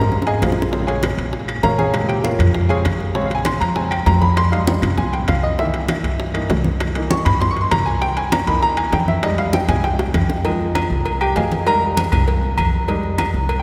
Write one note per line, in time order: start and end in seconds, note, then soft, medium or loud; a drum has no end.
0.00 0.39 G#2 loud
0.00 0.16 G3 medium
0.00 0.17 G#3 soft
0.00 0.17 D#4 medium
0.00 0.25 A#4 medium
0.00 0.25 A#5 medium
0.00 low bongo medium
0.12 low bongo medium
0.12 high conga soft
0.22 low bongo medium
0.27 0.41 G#4 medium
0.27 0.42 D#5 medium
0.27 0.41 F5 medium
0.27 0.42 G#5 medium
0.27 high conga soft
0.27 high timbale medium
0.42 1.12 A#1 medium
0.42 0.85 F4 soft
0.42 0.85 G#4 soft
0.42 0.85 C5 soft
0.42 0.85 F5 medium
0.42 low bongo medium
0.42 high conga medium
0.42 high timbale medium
0.42 low timbale medium
0.42 claves medium
0.52 low bongo loud
0.57 high conga soft
0.62 low bongo medium
0.71 1.90 C#3 medium
0.71 1.90 G#3 medium
0.71 1.90 C4 medium
0.71 high bongo medium
0.71 high conga soft
0.87 1.02 G#4 medium
0.87 1.02 C#5 medium
0.87 1.02 F5 medium
0.87 1.02 G#5 medium
0.87 high bongo soft
0.87 high conga soft
0.87 high timbale medium
1.03 high bongo medium
1.03 high conga medium
1.03 high timbale loud
1.03 claves medium
1.17 1.60 A#2 medium
1.17 high bongo soft
1.17 high conga soft
1.17 high timbale medium
1.33 high bongo medium
1.33 high conga soft
1.48 high bongo soft
1.48 high conga soft
1.48 high timbale medium
1.48 claves medium
1.63 2.34 A#2 medium
1.63 1.78 A#4 medium
1.63 1.77 C#5 medium
1.63 1.77 F5 medium
1.63 1.78 A#5 loud
1.63 high bongo medium
1.63 low bongo medium
1.63 high conga medium
1.63 high timbale medium
1.63 low timbale medium
1.78 2.07 G#4 medium
1.78 2.07 C#5 medium
1.78 2.07 F5 medium
1.78 2.07 G#5 medium
1.78 high conga medium
1.93 3.12 C3 medium
1.93 2.67 C#3 medium
1.93 2.68 G#3 medium
1.93 high bongo medium
1.93 high conga soft
1.93 high timbale medium
1.93 claves medium
2.09 2.24 G4 medium
2.09 2.24 G5 medium
2.09 high bongo soft
2.09 high conga soft
2.09 high timbale medium
2.24 2.67 F4 medium
2.24 2.67 A#4 medium
2.24 2.67 C#5 medium
2.24 2.67 F5 medium
2.24 high bongo medium
2.24 high conga medium
2.39 2.82 F2 loud
2.39 high conga soft
2.39 low conga medium
2.39 high timbale medium
2.39 claves medium
2.55 high bongo medium
2.55 high conga soft
2.69 2.83 C#3 soft
2.69 2.83 G#3 soft
2.69 2.84 C4 medium
2.69 2.79 G#4 medium
2.69 2.79 C#5 medium
2.69 2.79 F5 medium
2.69 2.79 G#5 loud
2.69 high bongo soft
2.69 high conga soft
2.69 high timbale medium
2.85 3.55 A#1 medium
2.85 high bongo medium
2.85 low bongo medium
2.85 high conga medium
2.85 high timbale medium
2.85 claves medium
3.00 high bongo soft
3.00 high conga soft
3.15 3.58 C#3 medium
3.15 3.59 G#3 medium
3.15 3.59 C4 medium
3.15 3.25 C#5 medium
3.15 high bongo medium
3.15 high conga soft
3.26 3.36 F5 medium
3.30 high bongo soft
3.30 high conga soft
3.30 high timbale medium
3.35 3.45 G#5 loud
3.45 3.60 C6 medium
3.45 high bongo medium
3.45 high conga loud
3.45 high timbale medium
3.45 claves medium
3.60 4.03 F2 medium
3.60 3.76 A#5 medium
3.60 high bongo soft
3.60 high conga soft
3.60 high timbale medium
3.75 3.90 C#3 soft
3.75 3.90 G#3 soft
3.75 3.90 C4 medium
3.75 3.91 G#5 medium
3.75 high bongo medium
3.75 high conga soft
3.91 4.06 G5 medium
3.91 high bongo soft
3.91 high conga soft
3.91 high timbale medium
3.91 claves medium
4.06 4.77 F2 medium
4.06 4.21 A#5 medium
4.06 high bongo medium
4.06 low bongo medium
4.06 high conga medium
4.06 high timbale medium
4.06 low timbale medium
4.21 4.36 B5 loud
4.21 high conga medium
4.37 4.52 C6 loud
4.37 high bongo medium
4.37 high conga soft
4.37 high timbale medium
4.37 claves medium
4.51 4.95 G3 medium
4.51 4.95 G#3 soft
4.51 4.96 D#4 medium
4.51 4.61 F5 loud
4.51 high bongo soft
4.51 high conga soft
4.51 high timbale medium
4.67 high bongo medium
4.67 high conga loud
4.82 5.25 C2 medium
4.82 high conga soft
4.82 low conga medium
4.82 high timbale medium
4.82 claves medium
4.98 5.13 G#5 medium
4.98 high bongo medium
4.98 high conga soft
4.98 low conga medium
5.13 5.28 G5 medium
5.13 high bongo soft
5.13 high conga soft
5.13 high timbale medium
5.28 5.99 C2 medium
5.28 5.43 F5 medium
5.28 high bongo medium
5.28 low bongo medium
5.28 high conga medium
5.28 high timbale medium
5.28 claves medium
5.43 5.58 D#5 medium
5.43 high bongo soft
5.43 high conga soft
5.58 6.03 D#3 medium
5.58 6.02 E3 medium
5.58 6.02 A#3 medium
5.58 6.46 E5 loud
5.58 high bongo medium
5.58 high conga soft
5.74 high bongo soft
5.74 high conga soft
5.74 high timbale medium
5.88 high bongo medium
5.88 high conga loud
5.88 high timbale loud
5.88 claves medium
6.04 6.46 G2 medium
6.04 high bongo soft
6.04 high conga soft
6.04 high timbale medium
6.19 high bongo medium
6.19 high conga soft
6.34 6.48 E3 soft
6.34 6.48 A#3 soft
6.34 6.48 D#4 medium
6.34 high bongo soft
6.34 high conga soft
6.34 high timbale medium
6.34 claves medium
6.49 7.20 C2 medium
6.49 high bongo medium
6.49 low bongo medium
6.49 high conga medium
6.49 high timbale medium
6.49 low timbale medium
6.64 high conga medium
6.80 high bongo medium
6.80 high conga soft
6.80 high timbale medium
6.80 claves medium
6.95 8.12 E3 medium
6.95 8.13 A#3 medium
6.95 8.13 D#4 medium
6.95 high bongo soft
6.95 high conga soft
6.95 high timbale medium
7.11 7.25 C#6 medium
7.11 high bongo medium
7.11 high conga loud
7.25 7.68 G2 medium
7.25 7.40 B5 loud
7.25 high conga soft
7.25 low conga medium
7.25 high timbale loud
7.25 claves medium
7.40 7.51 C6 loud
7.40 high bongo medium
7.40 high conga soft
7.40 low conga medium
7.51 7.61 C#6 loud
7.57 high bongo soft
7.57 high conga soft
7.57 high timbale soft
7.61 7.71 C6 medium
7.71 8.42 C2 medium
7.71 7.86 A#5 medium
7.71 high bongo medium
7.71 low bongo medium
7.71 high conga medium
7.71 high timbale loud
7.71 claves medium
7.86 8.01 G#5 loud
7.86 high bongo soft
7.86 high conga soft
8.01 8.16 G5 loud
8.01 high bongo medium
8.01 high conga soft
8.17 8.32 G#5 loud
8.17 high bongo soft
8.17 high conga soft
8.17 high timbale medium
8.32 8.47 A#5 medium
8.32 high bongo medium
8.32 high conga loud
8.32 high timbale medium
8.32 claves medium
8.47 8.89 E2 medium
8.47 8.90 E3 medium
8.47 8.90 A#3 medium
8.47 8.91 D#4 medium
8.47 8.62 B5 loud
8.47 high bongo soft
8.47 high conga soft
8.47 high timbale medium
8.62 8.77 A#5 loud
8.62 high bongo medium
8.62 high conga soft
8.77 8.92 G#5 medium
8.77 high bongo soft
8.77 high conga soft
8.77 high timbale medium
8.77 claves medium
8.92 9.63 F2 medium
8.92 9.08 G5 medium
8.92 high bongo medium
8.92 low bongo medium
8.92 high conga medium
8.92 high timbale medium
9.08 9.23 E5 medium
9.08 high conga medium
9.23 9.66 G3 medium
9.23 9.67 G#3 medium
9.23 9.67 D#4 medium
9.23 9.38 D#5 medium
9.23 high bongo medium
9.23 high conga soft
9.23 high timbale loud
9.23 claves medium
9.38 9.53 F5 medium
9.38 high bongo soft
9.38 high conga soft
9.38 high timbale medium
9.53 9.68 G5 medium
9.53 high bongo medium
9.53 high conga loud
9.68 10.11 C2 medium
9.68 9.82 G3 soft
9.68 9.82 G#3 soft
9.68 9.82 D#4 medium
9.68 9.84 G#5 loud
9.68 high conga soft
9.68 low conga medium
9.68 high timbale medium
9.68 claves medium
9.84 10.71 G5 loud
9.84 high bongo medium
9.84 high conga soft
9.99 high bongo loud
9.99 high conga soft
9.99 high timbale medium
10.14 10.85 F2 medium
10.14 low bongo medium
10.14 high conga medium
10.14 high timbale medium
10.14 claves medium
10.30 low bongo medium
10.30 high conga soft
10.44 11.62 F3 medium
10.44 11.62 G#3 medium
10.44 11.63 D#4 medium
10.44 cowbell loud
10.44 high conga soft
10.44 low agogo medium
10.61 high conga soft
10.75 cowbell medium
10.75 high conga loud
10.75 low agogo loud
10.75 claves medium
10.90 11.33 C2 medium
10.90 high conga soft
11.05 cowbell medium
11.05 high conga soft
11.05 low agogo medium
11.21 11.36 G4 medium
11.21 11.36 G5 loud
11.21 high conga soft
11.21 low agogo medium
11.21 claves medium
11.36 12.07 F2 medium
11.36 11.65 G#4 medium
11.36 11.65 D#5 medium
11.36 11.65 F5 medium
11.36 11.64 G#5 medium
11.36 cowbell medium
11.36 high conga medium
11.36 low timbale medium
11.36 low agogo medium
11.52 cowbell medium
11.52 high conga medium
11.66 12.10 G3 medium
11.66 12.10 G#3 medium
11.66 12.10 D#4 medium
11.66 11.82 A#4 medium
11.66 11.81 A#5 loud
11.66 cowbell loud
11.66 high conga soft
11.66 low agogo loud
11.66 claves medium
11.82 high conga soft
11.97 cowbell medium
11.97 high conga loud
11.97 low agogo medium
12.12 12.54 C2 loud
12.12 cowbell medium
12.12 high conga soft
12.12 low conga medium
12.12 low agogo loud
12.12 claves medium
12.27 cowbell medium
12.27 high conga soft
12.43 high conga soft
12.58 13.28 F2 medium
12.58 cowbell medium
12.58 high conga medium
12.58 low agogo loud
12.58 claves medium
12.73 high conga soft
12.88 13.31 G3 medium
12.88 13.31 G#3 medium
12.88 13.32 D#4 medium
12.88 cowbell medium
12.88 high conga soft
12.88 low agogo medium
13.03 high conga soft
13.18 cowbell medium
13.18 high conga loud
13.18 low agogo loud
13.18 claves medium
13.34 13.62 C2 medium
13.34 high conga soft
13.49 cowbell medium
13.49 high conga soft
13.49 low agogo medium
13.59 13.62 G5 medium